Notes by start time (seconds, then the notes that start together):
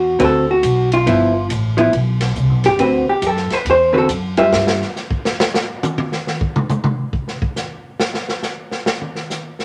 Already playing: E2 F#4
0.19 D2 D3 C4 F#4 B4, kick, ride
0.24 A4
0.51 F#4
0.63 B1, kick, hi-hat pedal, ride
0.92 F4, ride
1.06 G1 F3 B3 E4, kick, ride
1.49 A1, kick, hi-hat pedal, ride
1.77 F3 B3 E4, ride
1.93 B1, kick, ride
2.21 snare, ride
2.35 C2, kick, hi-hat pedal
2.49 B1
2.64 G1 G4, snare, ride
2.79 D2 D3 C4 F#4 B4, kick, ride
3.08 G4, muted upright bass stroke
3.22 F#2, kick, hi-hat pedal, ride
3.27 A4
3.37 snare
3.50 B4, muted upright bass stroke, snare, ride
3.65 E2, kick, ride
3.71 C5
3.93 D3 C4 F#4 B4
3.98 A4
4.08 F#2, kick, hi-hat pedal, ride
4.37 G3 F4 B4 E5, ride
4.52 G2, snare
4.67 snare
4.82 snare
4.96 snare, hi-hat pedal
5.11 kick
5.25 snare
5.40 snare
5.54 snare
5.83 hi-hat pedal, high tom
5.98 high tom
6.12 snare
6.27 snare
6.41 kick
6.56 mid tom
6.70 hi-hat pedal, mid tom
6.84 mid tom
7.13 kick
7.28 snare
7.42 kick
7.56 snare, hi-hat pedal
8.00 snare
8.14 snare
8.29 snare
8.43 snare, hi-hat pedal
8.71 snare
8.86 snare
9.01 high tom
9.15 snare
9.30 snare, hi-hat pedal
9.59 snare